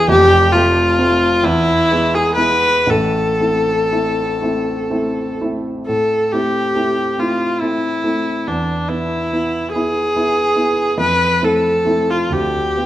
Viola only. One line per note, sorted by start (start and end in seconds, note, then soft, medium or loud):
0.10 0.54 G4 loud
0.52 1.46 F4 medium
1.44 2.16 E4 loud
2.15 2.35 G#4 medium
2.36 2.92 B4 medium
2.90 5.40 A4 medium
5.87 6.33 A4 medium
6.32 7.21 G4 medium
7.20 7.63 F4 medium
7.62 8.49 E4 medium
8.48 8.90 D4 medium
8.89 9.72 E4 medium
9.72 10.95 G#4 medium
11.00 11.46 B4 medium
11.45 12.12 A4 medium
12.10 12.34 F4 medium
12.33 12.86 G4 medium